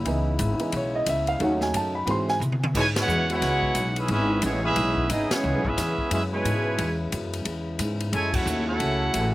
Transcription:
Already playing: E4
0.05 C#2 C#3 E3 G#3 B3 D#4, kick, ride
0.39 G#1, kick, hi-hat pedal, ride
0.59 E3 B3 D#4, muted upright bass stroke, ride
0.72 B1, kick, ride
0.76 C#5
0.95 D#5
1.06 C#2 E5, kick, hi-hat pedal, ride
1.27 F5, ride
1.40 D#2 F#3 A3 C#4 D#4, kick, ride
1.44 F#5
1.61 G#5, snare
1.74 F#2 A5, kick, hi-hat pedal, ride
1.95 B5
2.06 G#2 C3 E3 F#3 G#3 C4 E4 B5, kick, ride
2.11 C6
2.28 G#5, snare
2.40 C3, hi-hat pedal, high tom
2.52 high tom
2.64 high tom
2.73 G#2 B2 C#3 E3 G#3 B3 E4 C#5, kick, crash
2.77 E4 B4 G#5
2.96 G#3 B3 E4 F#4 B4 C#5 F#5, snare, ride
3.08 E2, hi-hat pedal
3.29 G#3 B3 E4 F#4 B4 C#5 F#5, ride
3.42 C#2, kick, snare, ride
3.62 kick
3.75 B1, kick, hi-hat pedal, ride
3.96 G#3 B3 C#4 E4 G#4 B4 E5, ride
4.08 G#1 G#3 B3 C#4 E4 G#4 B4 E5, kick, ride
4.42 A1 E3 G#3 B3 C#4 E4 G#4 C#5, kick, hi-hat pedal, ride
4.64 G#3 B3 C#4 E4 G#4 B4 E5
4.76 B1, kick, ride
4.97 kick
5.10 G#1 B3 D#4 E4 G#4 D#5, kick, hi-hat pedal, ride
5.30 E3 G#3 B3 C#4 E4 G#4 C#5, muted upright bass stroke, snare, ride
5.44 C#2
5.55 B1
5.65 G#1 G#3 B3 C#4 E4 G#4 B4 E5, kick
5.77 E2, kick, snare, hi-hat pedal, ride
5.98 muted upright bass stroke, kick
6.11 F#2 G#3 B3 C#4 E4 G#4 B4 E5, kick, ride
6.32 B2 E3 G#3 E4 B4 C#5 G#5
6.45 G#2, kick, hi-hat pedal, ride
6.78 E2, kick, ride
7.12 F#2, kick, hi-hat pedal, ride
7.33 ride
7.45 E2, kick, ride
7.79 G#2, kick, hi-hat pedal, ride
8.00 ride
8.12 F#2 C#3 F#3 G#3 C#4 E4 A4 C#5 G#5, kick, ride
8.33 A3 C#4 E4 F#4 A4 C#5 F#5, kick, crash
8.46 D#2, hi-hat pedal
8.67 A3 C#4 E4 F#4 A4 C#5 F#5
8.80 C#2, kick, ride
9.13 A1, kick, hi-hat pedal, ride

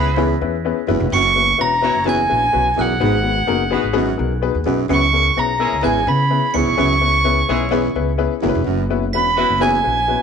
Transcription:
Already playing: C#2 B3 E4 G#4 B4 B5 B6
0.17 E2 B3 C#4 E4 G#4 B4
0.41 E2 B3 C#4 E4 G#4 B4
0.65 B3 C#4 E4 G#4 B4
0.87 F#1 E2 B3 C#4 E4 F#4 B4
1.00 E1
1.12 F#1 F#2 C#6 C#7
1.35 B3 C#4 E4 F#4 B4
1.58 E1 B3 C#4 E4 F#4 B4 A#5 A#6
1.81 B3 C#4 E4 F#4 B4 C#5
1.95 F#1
2.05 E2 B3 C#4 E4 F#4 B4 G#5
2.09 G#6
2.29 A#1 B3 C#4 E4 F#4 B4
2.52 B1 B3 C#4 E4 F#4 B4
2.77 B1 E2 B3 C#4 E4 F#4 A#4 F#6
2.81 F#5
3.00 G#1 G#2 B3 D#4 F#4 G#4 B4
3.23 B3 D#4 F#4 G#4 B4
3.47 F#1 B3 D#4 F#4 G#4 A#4
3.70 B3 D#4 F#4 G#4 B4
3.83 G#1
3.93 F#2 B3 D#4 F#4 G#4 B4
4.17 B1 B3 D#4 F#4 G#4 A#4
4.42 B3 D#4 F#4 G#4 B4
4.54 D#2
4.66 B1 F#2 B3 D#4 F#4 G#4 B4
4.89 C#2 F#2 B3 C#4 E4 G#4 B4 C#7
4.93 C#6
5.13 B3 C#4 E4 G#4 A#4
5.36 B1 B3 C#4 E4 G#4 B4 A#5 A#6
5.59 G#3 B3 C#4 E4 G#4 A#4
5.72 C#2
5.82 G#1 E2 B3 C#4 E4 G#4 B4 G#5 G#6
6.07 C#3 B3 C#4 E4 G#4 B4 B5 B6
6.30 B3 C#4 E4 G#4 B4
6.54 C#2 E2 B3 C#4 E4 G#4 B4 C#6 C#7
6.77 C#2 F#2 B3 C#4 E4 G#4 B4
7.01 B3 C#4 E4 G#4 B4
7.24 B3 C#4 E4 G#4 B4
7.49 B1 G#3 B3 C#4 E4 G#4 B4
7.71 E2 B3 C#4 E4 G#4 B4
7.95 C#2 B3 C#4 E4 G#4 B4
8.18 B3 C#4 E4 G#4 B4
8.42 F#1 E2 B3 C#4 E4 F#4 A#4
8.49 B4
8.55 E1
8.65 F#1 F#2
8.90 B3 C#4 E4 F#4 B4
9.13 E1 B3 C#4 E4 F#4 B4 B5 B6
9.37 B3 C#4 E4 F#4 B4
9.50 F#1
9.60 E2 B3 C#4 E4 F#4 B4 G#5 G#6
9.83 A#1 B3 C#4 E4 F#4 B4
10.08 B3 C#4 E4 F#4 B4

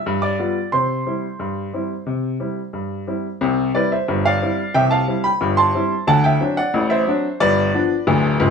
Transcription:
Already playing: E5 E6
0.06 G2
0.22 D5 D6
0.39 G3 B3 F4
0.72 C3 C5 C6
1.06 G3 C4 E4
1.39 G2
1.73 G3 C4 E4
2.06 C3
2.40 G3 C4 E4
2.73 G2
3.07 G3 C4 E4
3.41 C2 C3
3.75 G3 C4 E4 B4 D5
3.92 C5 E5
4.08 G1 G2
4.25 D5 F5
4.42 G3 C4 E4
4.74 C2 C3 E5 G5
4.91 F5 A5
5.08 G3 C4 E4
5.24 G5 B5
5.41 G1 G2
5.57 A5 C6
5.75 G3 C4 E4
6.07 D2 D3 F#5 A5
6.24 E5 G5
6.41 F#3 C4 D4
6.57 D5 F#5
6.74 A1 A2
6.90 C5 E5
7.07 F#3 C4 D4
7.40 G1 G2 B4 D5
7.74 F3 B3 D4
8.07 D1 D2
8.40 C#1 C#2

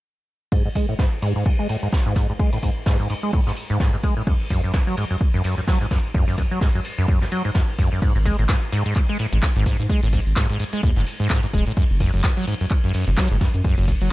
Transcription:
0.52 G#2, kick, ride
0.65 G#2
0.75 G#3, kick, open hi-hat, ride
0.89 A2
0.99 G#2, kick, snare, ride
1.22 G#2, open hi-hat, ride
1.36 G#2
1.46 G#2, kick, ride
1.59 G#3, ride
1.69 A2, open hi-hat
1.83 G#2
1.92 kick, snare, ride
2.06 G#2
2.15 G#2, kick, snare, open hi-hat, ride
2.29 G#2
2.40 G#3, kick, ride
2.52 A2, open hi-hat, ride
2.63 G#2, kick, open hi-hat, ride
2.86 G#2, kick, snare, ride
3.00 G#2
3.10 G#2, open hi-hat, ride
3.23 G#3
3.32 A2, kick, ride
3.47 G#2, snare
3.56 open hi-hat, ride
3.70 G#2
3.80 G#2, kick, snare, ride
3.93 G#2
4.03 G#3, kick, open hi-hat, ride
4.17 A2
4.27 F#2, kick, ride
4.50 F#2, kick, open hi-hat, ride
4.64 F#2
4.74 F#2, kick, snare, ride
4.87 F#3
4.97 G#2, open hi-hat, ride
5.11 F#2
5.20 kick, ride
5.34 F#2, ride
5.44 F#2, open hi-hat
5.57 F#2
5.67 F#3, kick, snare, ride
5.81 G#2
5.91 F#2, kick, snare, open hi-hat, ride
6.14 F#2, kick, ride
6.28 F#2, open hi-hat, ride
6.38 F#2, kick, open hi-hat, ride
6.51 F#3
6.61 G#2, kick, snare, ride
6.75 F#2
6.84 open hi-hat, ride
6.98 F#2
7.08 kick, ride
7.21 F#2, snare
7.31 F#3, open hi-hat, ride
7.45 G#2
7.54 F#2, kick, snare, ride
7.79 F#2, kick, open hi-hat, ride
7.92 F#2
8.02 G#2, kick, closed hi-hat, ride, maracas
8.15 G#1 G#2, closed hi-hat
8.25 G#3, kick, open hi-hat, ride, maracas
8.39 G#1 A2, closed hi-hat, maracas
8.49 G#2, kick, snare, clap, closed hi-hat, ride, maracas
8.62 closed hi-hat
8.72 G#2, open hi-hat, ride, maracas
8.85 G#2, closed hi-hat, maracas
8.95 G#2, kick, clap, closed hi-hat, ride, maracas
9.09 G#3, closed hi-hat, ride
9.19 A2, open hi-hat, maracas
9.32 G#1 G#2, closed hi-hat, maracas
9.42 kick, snare, clap, closed hi-hat, ride, maracas
9.56 G#1 G#2, closed hi-hat
9.66 G#2, kick, snare, open hi-hat, ride, maracas
9.78 G#2, closed hi-hat, maracas
9.89 G#3, kick, closed hi-hat, ride, maracas
10.03 G#1 A2, open hi-hat, ride
10.12 G#2, kick, open hi-hat, ride, maracas
10.26 G#1, closed hi-hat, maracas
10.36 G#2, kick, snare, clap, closed hi-hat, ride, maracas
10.50 G#2, closed hi-hat
10.59 G#2, open hi-hat, ride, maracas
10.73 G#3, closed hi-hat, maracas
10.83 D#2 A2, kick, closed hi-hat, ride, maracas
10.96 F#1 G#2, snare, closed hi-hat
11.07 open hi-hat, ride, maracas
11.20 G#2, closed hi-hat, maracas
11.30 kick, snare, clap, closed hi-hat, ride, maracas
11.43 G#2, closed hi-hat
11.54 D#1 G#3, kick, open hi-hat, ride, maracas
11.66 A2, closed hi-hat, maracas
11.77 F#2, kick, closed hi-hat, ride, maracas
11.90 F#1, closed hi-hat
12.00 F#2, kick, open hi-hat, ride, maracas
12.13 F#1 F#2, closed hi-hat, maracas
12.23 F#2, kick, snare, clap, closed hi-hat, ride, maracas
12.37 F#3, closed hi-hat
12.47 G#2, open hi-hat, ride, maracas
12.60 F#2, closed hi-hat, maracas
12.71 kick, clap, closed hi-hat, ride, maracas
12.84 F#2, closed hi-hat, ride
12.94 F#2, open hi-hat, maracas
13.07 F#1 F#2, closed hi-hat, maracas
13.18 F#3, kick, snare, clap, closed hi-hat, ride, maracas
13.31 F#1 G#2, closed hi-hat
13.41 F#2, kick, snare, open hi-hat, ride, maracas
13.54 F#2, closed hi-hat, maracas
13.64 F#2, kick, closed hi-hat, ride, maracas
13.78 F#1 F#2, open hi-hat, ride
13.88 F#2, kick, open hi-hat, ride, maracas
14.01 F#1 F#3, closed hi-hat, maracas

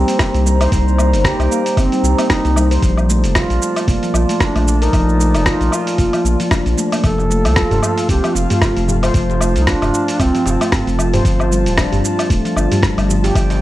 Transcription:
Already playing: C4 D#4 C5 A#5
0.08 A#3, open hi-hat, shaker
0.19 kick, cross-stick, open hi-hat, low woodblock, shaker
0.34 C2 A#3, open hi-hat, shaker
0.46 G3, shaker
0.60 C5, open hi-hat, low woodblock, shaker
0.72 C2 G3, kick, open hi-hat, shaker
0.88 shaker
0.98 A#3, low woodblock, shaker
1.13 G1, open hi-hat, shaker
1.25 G4, kick, cross-stick, open hi-hat, shaker
1.39 C2, open hi-hat, low woodblock, shaker
1.51 A#3, shaker
1.66 open hi-hat, shaker
1.77 G1 C4, kick, open hi-hat, low woodblock, shaker
1.92 G3, open hi-hat, shaker
2.03 C2 G4, shaker
2.19 A#3, open hi-hat, low woodblock, shaker
2.30 D#4, kick, cross-stick, open hi-hat, shaker
2.45 C2 A#3, open hi-hat, shaker
2.56 G3, low woodblock, shaker
2.71 C5, open hi-hat, shaker
2.82 A#1 F3 D5 A5, kick, open hi-hat, shaker
2.97 low woodblock, shaker
3.09 A3, shaker
3.24 F1, open hi-hat, shaker
3.35 F4, kick, cross-stick, open hi-hat, low woodblock, shaker
3.50 A#1, open hi-hat, shaker
3.62 shaker
3.76 open hi-hat, low woodblock, shaker
3.88 F1 A#3, kick, open hi-hat, shaker
4.03 F3, open hi-hat, shaker
4.14 A#1 F4, low woodblock, shaker
4.29 A3, open hi-hat, shaker
4.40 D4, kick, cross-stick, open hi-hat, shaker
4.55 A#1 A3, open hi-hat, low woodblock, shaker
4.67 F3, shaker
4.82 D#4 A#4, open hi-hat, shaker
4.93 A#1 F3, kick, open hi-hat, low woodblock, shaker
5.09 shaker
5.20 A3, shaker
5.34 F1, open hi-hat, low woodblock, shaker
5.46 F4, kick, cross-stick, open hi-hat, shaker
5.61 A#1, open hi-hat, shaker
5.72 F4, low woodblock, shaker
5.87 open hi-hat, shaker
5.98 F1 A#3, kick, open hi-hat, shaker
6.13 F3, open hi-hat, low woodblock, shaker
6.25 A#1 A#3, shaker
6.40 F3, open hi-hat, shaker
6.51 D4, kick, cross-stick, open hi-hat, low woodblock, shaker
6.66 A#1 D4, open hi-hat, shaker
6.77 A3, shaker
6.92 A#3, open hi-hat, low woodblock, shaker
7.04 F1 F3 F4 A4 F5 A5, kick, open hi-hat, low woodblock, shaker
7.18 djembe slap, shaker
7.30 A3, shaker
7.45 C2, open hi-hat, low woodblock, shaker
7.56 F4, kick, cross-stick, open hi-hat, shaker
7.71 F1, open hi-hat, djembe tone, djembe bass, shaker
7.83 low woodblock, shaker
7.98 open hi-hat, shaker
8.09 C2 C4 G4, kick, open hi-hat, shaker
8.24 F3, open hi-hat, low woodblock, shaker
8.35 F1 F4, shaker
8.50 A3, open hi-hat, djembe bass, shaker
8.62 kick, cross-stick, open hi-hat, low woodblock, shaker
8.77 F1 A3, open hi-hat, shaker
8.88 F3, djembe tone, shaker
9.03 C5, open hi-hat, djembe slap, low woodblock, shaker
9.14 F1 F3, kick, open hi-hat, shaker
9.30 djembe slap, shaker
9.41 A3, low woodblock, shaker
9.55 C2, open hi-hat, shaker
9.61 D#4
9.67 D4 F4, kick, cross-stick, open hi-hat, shaker
9.81 F1, open hi-hat, djembe tone, low woodblock, shaker
9.94 shaker
10.08 open hi-hat, shaker
10.19 C2 C4, kick, open hi-hat, low woodblock, shaker
10.35 F3, open hi-hat, djembe slap, shaker
10.46 F1 F4, djembe slap, shaker
10.61 A3, open hi-hat, low woodblock, shaker
10.72 kick, cross-stick, open hi-hat, djembe tone, shaker
10.87 F1 A3, open hi-hat, shaker
10.99 F3, low woodblock, shaker
11.13 C5, open hi-hat, djembe slap, djembe bass, shaker
11.25 G1 F3, kick, open hi-hat, shaker
11.39 djembe slap, low woodblock, shaker
11.51 G3, shaker
11.66 D1, open hi-hat, shaker
11.77 D4, kick, cross-stick, open hi-hat, low woodblock, shaker
11.92 G1, open hi-hat, djembe tone, djembe bass, shaker
12.05 shaker
12.19 open hi-hat, low woodblock, shaker
12.30 D1 A3, kick, open hi-hat, shaker
12.45 F3, open hi-hat, shaker
12.56 G1 D4, low woodblock, shaker
12.71 G3, open hi-hat, djembe bass, shaker
12.83 kick, cross-stick, open hi-hat, shaker
12.97 G1 G3, open hi-hat, low woodblock, shaker
13.09 F3, djembe tone, shaker
13.24 G4, open hi-hat, djembe slap, shaker
13.35 G1 F3, kick, open hi-hat, low woodblock, shaker
13.50 open hi-hat, djembe slap, shaker

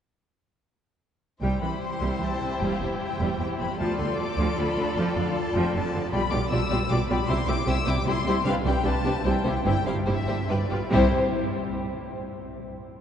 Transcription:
1.42 C2 G3 E4 G4 C5 G5
1.62 C2 E3 B5
1.82 C6
2.01 C2 G3
2.20 C2 E3 A5
2.40 C2 C3
2.60 E1 E2 G3 G5
2.70 F5
2.80 E1 E2 E3 E5
3.00 G5
3.20 E1 E2 G3
3.40 E1 E2 E3 G5
3.60 E1 E2 C3 B5
3.79 D2 F3 F4 A4 D5 A5
3.98 D2 D3 C6
4.19 D6
4.37 D2 F3
4.57 D2 D3 B5
4.76 D2 D3
4.96 F1 F2 F3 A5
5.08 G5
5.15 F1 F2 D3 F5
5.36 A5
5.54 F1 F2 F3 G5
5.74 F1 F2 D3 A5
5.93 F1 F2 D3
6.12 B1 B2 G3 F4 G4 D5 B5
6.31 B1 B2 G3 F4 G4 D5 D6
6.50 B1 B2 G3 F4 G4 D5 E6
6.70 B1 B2 G3 F4 G4 D5
6.89 B1 B2 G3 F4 G4 D5 D6
7.09 B1 B2 G3 F4 G4 D5 B5
7.27 C2 C3 G3 E4 G4 C6
7.31 C5
7.47 C2 C3 G3 E4 G4 C5 D6
7.66 C2 C3 G3 E4 G4 C5 E6
7.86 C2 C3 G3 E4 G4 C5 D6
8.05 C2 C3 G3 E4 G4 C5 C6
8.25 C2 C3 G3 E4 G4 C5
8.44 C2 C3 G3 D4 G4 B4 F5
8.65 C2 C3 G3 D4 G4 B4 G5
8.84 C2 C3 G3 D4 G4 B4 A5
9.04 C2 C3 G3 D4 G4 B4
9.24 C2 C3 G3 E4 G4 C5 G5
9.45 C2 C3 G3 E4 G4 C5
9.65 G1 G2 G3 E4 G4 C5 G5
9.86 G1 G2 G3 E4 G4 C5 F5
10.06 G1 G2 G3 E4 G4 C5 E5
10.27 G1 G2 G3 E4 G4 C5
10.49 G1 G2 G3 F4 G4 B4 D5
10.70 G1 G2 G3 F4 G4 B4
10.92 C2 C3 G3 E4 G4 C5

